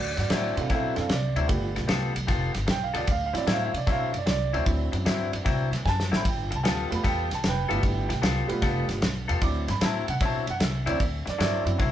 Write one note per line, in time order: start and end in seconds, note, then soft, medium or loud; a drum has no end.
0.00 0.16 D2 medium
0.00 0.17 F#4 medium
0.00 0.18 D5 medium
0.17 0.30 G2 medium
0.17 0.31 F#4 medium
0.17 0.32 D5 medium
0.17 muted clean electric guitar stroke medium
0.17 snare soft
0.17 ride medium
0.30 0.55 A2 medium
0.30 0.57 D3 medium
0.30 0.56 F#3 medium
0.30 0.56 C4 medium
0.30 0.55 E4 medium
0.30 snare loud
0.30 ride medium
0.34 0.56 F#4 medium
0.34 0.58 D5 medium
0.56 0.69 C3 medium
0.56 0.94 C4 medium
0.56 0.94 D4 medium
0.56 0.94 E4 medium
0.56 0.94 F#4 medium
0.56 0.71 A4 medium
0.56 0.71 F5 medium
0.56 muted clean electric guitar stroke soft
0.56 ride medium
0.70 0.95 B2 medium
0.70 0.97 D3 medium
0.70 0.96 F#3 medium
0.70 0.95 C4 medium
0.70 0.95 E4 medium
0.70 kick loud
0.70 snare soft
0.70 ride medium
0.74 0.95 A4 medium
0.74 0.98 F5 medium
0.95 1.08 F#2 medium
0.95 1.08 C4 medium
0.95 1.08 D4 medium
0.95 1.08 E4 medium
0.95 1.08 A4 medium
0.95 muted clean electric guitar stroke medium
0.95 snare soft
0.95 ride medium
1.00 1.11 F5 medium
1.09 1.34 C2 medium
1.09 1.88 D5 medium
1.09 muted clean electric guitar stroke soft
1.09 snare loud
1.09 ride medium
1.36 1.51 D2 medium
1.36 1.50 D3 medium
1.36 1.48 F#3 medium
1.36 1.49 C4 medium
1.36 1.49 E4 medium
1.36 ride medium
1.47 1.74 G1 medium
1.47 2.09 A3 medium
1.47 2.09 B3 medium
1.47 2.10 F4 medium
1.47 2.10 G4 medium
1.47 muted clean electric guitar stroke soft
1.47 kick loud
1.47 ride medium
1.76 1.88 B1 medium
1.76 muted clean electric guitar stroke medium
1.76 snare soft
1.76 ride medium
1.88 2.14 C2 medium
1.88 2.15 G3 medium
1.88 2.14 B3 medium
1.88 2.14 F4 medium
1.88 2.14 A4 loud
1.88 snare loud
1.88 ride medium
2.15 2.28 B1 medium
2.15 muted clean electric guitar stroke soft
2.15 ride medium
2.27 2.53 F1 medium
2.27 2.55 G3 medium
2.27 2.53 B3 medium
2.27 2.53 F4 medium
2.27 2.52 A4 medium
2.27 kick loud
2.27 snare soft
2.27 ride medium
2.53 2.67 G1 medium
2.53 muted clean electric guitar stroke medium
2.53 snare soft
2.53 ride medium
2.67 2.93 B1 medium
2.67 2.82 G5 loud
2.67 muted clean electric guitar stroke soft
2.67 snare loud
2.67 ride medium
2.84 2.96 F5 medium
2.94 3.07 D2 medium
2.94 3.07 G3 medium
2.94 3.07 B3 medium
2.94 3.07 F4 loud
2.94 3.08 A4 medium
2.94 3.09 D5 medium
2.94 ride medium
3.07 3.33 D2 loud
3.07 muted clean electric guitar stroke soft
3.07 kick loud
3.07 ride medium
3.11 3.23 F5 loud
3.26 3.37 F5 medium
3.33 3.46 G2 medium
3.33 3.46 F#3 medium
3.33 3.46 C4 medium
3.33 3.46 D4 medium
3.33 3.46 E4 medium
3.33 muted clean electric guitar stroke medium
3.33 snare soft
3.33 ride medium
3.38 3.49 D5 medium
3.47 3.72 A2 medium
3.47 3.74 D3 medium
3.47 3.73 F#3 medium
3.47 3.73 C4 loud
3.47 3.73 E4 loud
3.47 snare loud
3.47 ride medium
3.52 3.63 F5 loud
3.65 3.76 F5 medium
3.74 3.86 C3 medium
3.74 muted clean electric guitar stroke soft
3.74 ride medium
3.78 3.89 D5 medium
3.87 4.12 B2 medium
3.87 4.14 D3 medium
3.87 4.12 F#3 medium
3.87 4.12 C4 loud
3.87 4.12 E4 loud
3.87 kick loud
3.87 snare soft
3.87 ride medium
3.92 4.02 F5 loud
4.04 4.15 F5 medium
4.13 4.26 F#2 medium
4.13 muted clean electric guitar stroke medium
4.13 ride medium
4.18 4.29 D5 medium
4.26 4.51 C2 medium
4.26 4.29 C#5 medium
4.26 muted clean electric guitar stroke soft
4.26 snare loud
4.26 ride medium
4.31 4.67 D5 loud
4.53 4.66 D2 medium
4.53 4.65 D3 medium
4.53 4.65 F#3 medium
4.53 4.65 C4 loud
4.53 4.66 E4 medium
4.53 ride medium
4.65 4.91 D2 loud
4.65 5.77 F#3 medium
4.65 5.77 C4 medium
4.65 5.77 D4 medium
4.65 5.77 E4 medium
4.65 muted clean electric guitar stroke soft
4.65 kick loud
4.65 ride medium
4.92 5.05 F#2 medium
4.92 muted clean electric guitar stroke medium
4.92 ride medium
5.06 5.31 G2 medium
5.06 5.32 D3 medium
5.06 5.32 F#3 loud
5.06 5.32 C4 medium
5.06 5.31 E4 medium
5.06 snare loud
5.06 ride medium
5.32 5.45 F#2 medium
5.32 muted clean electric guitar stroke soft
5.32 ride medium
5.45 5.70 C2 medium
5.45 5.72 D3 medium
5.45 5.72 F#3 medium
5.45 5.71 C4 medium
5.45 5.71 E4 medium
5.45 kick loud
5.45 snare soft
5.45 ride medium
5.72 5.84 D2 medium
5.72 muted clean electric guitar stroke medium
5.72 snare soft
5.72 ride medium
5.85 6.10 F#2 medium
5.85 5.88 G#5 medium
5.85 6.13 A5 loud
5.85 muted clean electric guitar stroke soft
5.85 kick medium
5.85 snare medium
6.00 snare medium
6.12 6.24 A1 medium
6.12 6.26 D3 medium
6.12 6.25 F#3 medium
6.12 6.25 C4 medium
6.12 6.25 E4 loud
6.12 snare loud
6.16 6.27 B5 medium
6.25 6.50 G1 loud
6.25 6.53 G5 medium
6.25 muted clean electric guitar stroke soft
6.25 kick loud
6.25 ride medium
6.51 6.64 C2 medium
6.51 muted clean electric guitar stroke soft
6.51 ride medium
6.56 6.66 A5 medium
6.63 6.89 D2 medium
6.63 6.91 G3 medium
6.63 6.90 B3 medium
6.63 6.90 F4 loud
6.63 6.89 A4 loud
6.63 6.66 G#5 medium
6.63 snare loud
6.63 ride medium
6.68 6.92 A5 loud
6.90 7.04 F2 medium
6.90 7.03 G3 medium
6.90 7.03 A3 medium
6.90 7.03 B3 medium
6.90 7.03 F4 medium
6.90 7.05 B5 medium
6.90 muted clean electric guitar stroke soft
6.90 ride medium
7.03 7.29 E2 loud
7.03 7.30 G3 medium
7.03 7.30 B3 medium
7.03 7.29 F4 medium
7.03 7.29 A4 medium
7.03 kick loud
7.03 snare soft
7.03 ride medium
7.08 7.32 G5 loud
7.30 7.43 B1 medium
7.30 muted clean electric guitar stroke medium
7.30 snare soft
7.30 ride medium
7.34 7.45 A5 loud
7.44 7.69 F1 medium
7.44 muted clean electric guitar stroke soft
7.44 snare loud
7.44 ride medium
7.48 8.61 B4 medium
7.48 8.61 G5 loud
7.69 7.83 G1 medium
7.69 8.20 G3 medium
7.69 7.82 G3 medium
7.69 8.20 A3 medium
7.69 8.20 B3 medium
7.69 7.82 B3 medium
7.69 8.20 E4 medium
7.69 7.82 F4 medium
7.69 7.83 A4 loud
7.69 ride medium
7.83 8.08 G1 loud
7.83 muted clean electric guitar stroke soft
7.83 kick loud
7.83 ride medium
8.09 8.22 B1 medium
8.09 muted clean electric guitar stroke medium
8.09 snare soft
8.09 ride medium
8.22 8.48 C2 medium
8.22 8.49 G3 medium
8.22 8.48 B3 medium
8.22 8.48 F4 loud
8.22 8.48 A4 loud
8.22 snare loud
8.22 ride medium
8.48 8.61 B1 medium
8.48 8.99 G3 medium
8.48 8.99 A3 medium
8.48 8.99 B3 medium
8.48 8.99 F4 loud
8.48 muted clean electric guitar stroke medium
8.48 ride medium
8.62 8.87 F1 loud
8.62 8.89 G3 medium
8.62 8.89 B3 medium
8.62 8.88 F4 loud
8.62 8.88 A4 loud
8.62 kick loud
8.62 snare soft
8.62 ride medium
8.89 9.01 G1 medium
8.89 muted clean electric guitar stroke medium
8.89 snare soft
8.89 ride medium
9.02 9.27 B1 medium
9.02 muted clean electric guitar stroke soft
9.02 snare loud
9.02 ride medium
9.28 9.42 E2 medium
9.28 9.42 G3 medium
9.28 9.42 B3 medium
9.28 9.42 F4 loud
9.28 9.42 A4 loud
9.28 ride medium
9.41 9.67 D2 medium
9.41 9.65 F#3 medium
9.41 9.65 C4 medium
9.41 9.66 D4 medium
9.41 9.66 E4 medium
9.41 9.68 D6 loud
9.41 muted clean electric guitar stroke soft
9.41 kick loud
9.41 ride medium
9.68 9.81 G2 medium
9.68 9.82 B5 medium
9.68 muted clean electric guitar stroke medium
9.68 snare soft
9.68 ride medium
9.81 10.06 A2 medium
9.81 10.08 D3 medium
9.81 10.07 F#3 loud
9.81 10.07 C4 medium
9.81 10.06 E4 loud
9.81 10.09 A5 medium
9.81 snare loud
9.81 ride medium
10.07 10.20 C3 medium
10.07 10.22 F#5 medium
10.07 muted clean electric guitar stroke medium
10.07 ride medium
10.20 10.46 B2 medium
10.20 10.48 D3 medium
10.20 10.47 F#3 medium
10.20 10.46 C4 medium
10.20 10.46 E4 medium
10.20 kick loud
10.20 snare soft
10.20 ride medium
10.25 10.49 A5 loud
10.47 10.60 F#2 medium
10.47 10.62 F#5 medium
10.47 muted clean electric guitar stroke medium
10.47 ride medium
10.60 10.85 C2 medium
10.60 10.87 E5 loud
10.60 muted clean electric guitar stroke soft
10.60 snare loud
10.60 ride medium
10.86 10.99 D2 loud
10.86 10.98 D3 medium
10.86 10.98 F#3 medium
10.86 10.99 F#3 medium
10.86 10.98 C4 medium
10.86 10.99 C4 loud
10.86 10.99 D4 medium
10.86 10.99 E4 loud
10.86 10.99 E4 medium
10.86 11.01 D5 medium
10.86 ride medium
10.99 11.25 D2 medium
10.99 11.27 E5 medium
10.99 muted clean electric guitar stroke medium
10.99 kick loud
10.99 ride medium
11.26 11.39 F#2 medium
11.26 11.40 D5 loud
11.26 muted clean electric guitar stroke medium
11.26 snare soft
11.26 ride medium
11.39 11.64 G2 medium
11.39 11.66 D3 loud
11.39 11.65 F#3 medium
11.39 11.65 C4 loud
11.39 11.64 E4 loud
11.39 11.66 D5 loud
11.39 snare loud
11.39 ride medium
11.65 11.78 F#2 medium
11.65 11.78 F#3 medium
11.65 11.78 C4 medium
11.65 11.78 D4 medium
11.65 11.78 E4 medium
11.65 muted clean electric guitar stroke soft
11.65 ride medium
11.78 11.92 C2 loud
11.78 11.92 D3 medium
11.78 11.92 F#3 medium
11.78 11.92 C4 medium
11.78 11.92 E4 medium
11.78 kick loud
11.78 ride medium